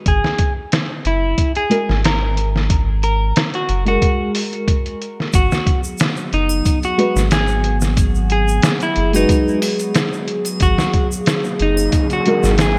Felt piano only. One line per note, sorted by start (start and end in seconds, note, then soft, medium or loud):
1.70 1.89 G#3 medium
1.70 1.89 F#4 medium
1.70 1.90 A#4 loud
3.85 5.31 G#3 medium
3.85 5.32 F#4 medium
3.85 5.33 A#4 medium
6.98 7.17 G#3 medium
6.98 7.17 F#4 medium
6.98 7.18 B4 medium
9.13 10.59 G#3 medium
9.13 10.59 F#4 medium
9.13 10.60 B4 medium
12.27 12.45 G#3 medium
12.27 12.45 F#4 medium
12.27 12.46 A#4 loud